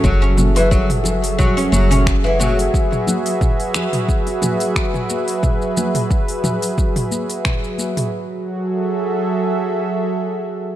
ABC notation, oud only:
X:1
M:4/4
L:1/16
Q:"Swing 16ths" 1/4=89
K:F#m
V:1 name="Oud" clef=bass
F, C2 E, F, z3 F, C F, C2 E, F, z | z16 | z16 | z16 |]